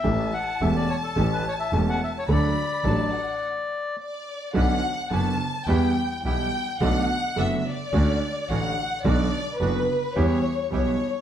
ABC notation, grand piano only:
X:1
M:4/4
L:1/8
Q:1/4=107
K:D
V:1 name="Grand piano" clef=bass
[A,,,A,,E,A,CG] z [E,,,E,,E,A,CG] z [A,,,A,,E,A,CG] z [E,,,E,,E,A,CG] z | [D,,D,F,A,DA] z [A,,,A,,F,A,DA] z4 z | [K:Bm] [B,,,B,,D,B,CF] z [F,,,F,,D,B,CF] z [E,,E,G,B,G] z [B,,,B,,E,G,B,G] z | [B,,,B,,D,A,B,F] z [F,,,F,,D,A,B,F] z [D,,D,A,CF] z [A,,,A,,D,A,CF] z |
[B,,,B,,D,F,B,F] z [F,,,F,,D,F,B,F] z [E,,E,G,B,G] z [B,,,B,,E,G,B,G] z |]